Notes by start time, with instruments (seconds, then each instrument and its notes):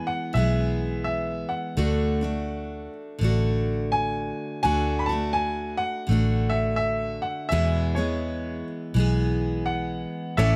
Already playing: steel-string acoustic guitar E3 G#3 B3 G#4
0.07 upright piano F#5
0.33 fingered electric bass B1, steel-string acoustic guitar E3 G#3, upright piano E5
0.37 steel-string acoustic guitar B3 G#4
1.04 upright piano E5
1.49 upright piano F#5
1.77 fingered electric bass D2, steel-string acoustic guitar D3 A3 D4 F#4
2.21 steel-string acoustic guitar A3 D4 F#4
3.19 fingered electric bass A1, steel-string acoustic guitar D3 A3
3.23 steel-string acoustic guitar D4 F#4
3.92 upright piano G#5
4.63 fingered electric bass D2, steel-string acoustic guitar D3 A3 D4 F#4, upright piano G#5
4.99 upright piano B5
5.06 steel-string acoustic guitar F#4, upright piano A5
5.10 steel-string acoustic guitar A3 D4
5.33 upright piano G#5
5.77 upright piano F#5
6.07 fingered electric bass A1, steel-string acoustic guitar D3 A3
6.11 steel-string acoustic guitar D4 F#4
6.50 upright piano E5
6.76 upright piano E5
7.22 upright piano F#5
7.49 steel-string acoustic guitar E2 B2 E3 G#3 B3, fingered electric bass E2, upright piano E5
7.53 steel-string acoustic guitar G#4
7.95 steel-string acoustic guitar G#3 B3 G#4, upright piano C#5
7.99 steel-string acoustic guitar E3
8.94 fingered electric bass B1, steel-string acoustic guitar E3 G#3
8.98 steel-string acoustic guitar B3 G#4
9.66 upright piano F#5
10.37 fingered electric bass A1, steel-string acoustic guitar A2 E3 A3 C#4 A4, pedal steel guitar A4 C#5 D5, upright piano E5